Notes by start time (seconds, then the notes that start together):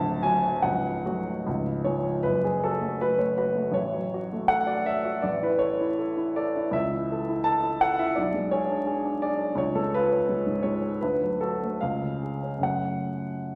Already playing: D1 D2 A5
0.23 F#3 F#4 G#5
0.62 C#1 C#2 F#5
1.05 F#3 A3 F#4
1.46 C#1 C#2
1.84 F3 G#3 G#4 C#5
2.23 F#1 B4
2.44 F#3 G#4
2.64 F#4 A4
2.81 A3
3.01 F#4 B4
3.18 A3 C#5
3.37 F#4 B4
3.55 A3
3.72 A1 C#5
3.95 F#3
4.14 F#4
4.33 A3
4.48 A4 F#5
4.67 F#4 D5
4.86 A4 E5
5.05 F#4
5.22 A1 D5
5.42 E3 B4
5.59 A4 C#5
5.81 E4
5.99 A4
6.17 E4
6.36 A4 D5
6.56 E4
6.71 C#2 E5
6.93 E3
7.12 A4
7.29 E4
7.44 A4 A5
7.62 E4
7.81 A4 F#5
7.99 E4 E5
8.15 B1 D5
8.34 G#3
8.51 G#4 C#5
8.68 D4
8.87 G#4
9.05 D4
9.22 G#4 D5
9.41 D4
9.55 C#2 C#5
9.75 G#3 A4
9.94 F4 B4
10.12 C#4
10.29 G#3
10.47 G#2
10.63 G#3 C#5
10.83 C#4
11.01 D2 B4
11.21 F#3
11.41 F#4 A4
11.63 A3
11.81 C#2 F5
12.03 C#3
12.23 G#4
12.43 C#4
12.58 F#2 C#3 A3
12.63 F#4 F#5